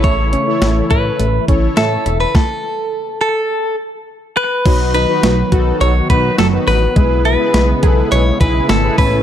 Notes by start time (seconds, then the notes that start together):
Already playing: A1 C#3 E3 A3 E4 A4 C#5
0.04 A3 C#5, kick, closed hi-hat
0.33 C#4, closed hi-hat
0.47 E4 A4 C#5
0.62 A1 C#5, snare, closed hi-hat
0.90 A1 B4 E5, kick, closed hi-hat
1.19 A1 A3, closed hi-hat
1.48 A1 C#4 E4 A4 C#5, kick, closed hi-hat
1.77 A1 A4 E5, snare, closed hi-hat
2.06 E1 E5, closed hi-hat
2.20 B4
2.35 A4, kick, snare
3.21 A4
4.37 B4
4.66 B1 D#3 F#3 B3 D#4 F#4 B4, kick, closed hi-hat, crash
4.94 D#4 B4, closed hi-hat
5.09 D#4 F#4 B4
5.23 B1 F#3, snare, closed hi-hat
5.52 B1 D#4 F#4 A4, kick, closed hi-hat
5.81 B1 F#3 C#5, closed hi-hat
6.10 B1 D#4 F#4 B4, kick, closed hi-hat
6.38 F#1 F#3 A4, snare, closed hi-hat
6.53 D#4 F#4 B4
6.67 A1 B4, open hi-hat
6.96 B1 C#3 G#3 E4 G#4 B4, kick, closed hi-hat
7.25 E4 B4, closed hi-hat
7.40 E4 G#4 B4
7.54 B1 G#3, snare, closed hi-hat
7.83 B1 E4 G#4 B4, kick, closed hi-hat
7.89 A4
8.12 B1 G#3 C#5, closed hi-hat
8.41 B1 E4 G#4 B4, kick, closed hi-hat
8.69 G#1 G#3 A4, snare, closed hi-hat
8.84 E4 G#4 B4
8.98 A1 E3 A3 C#4 E4 A4 B4 C#5, kick, open hi-hat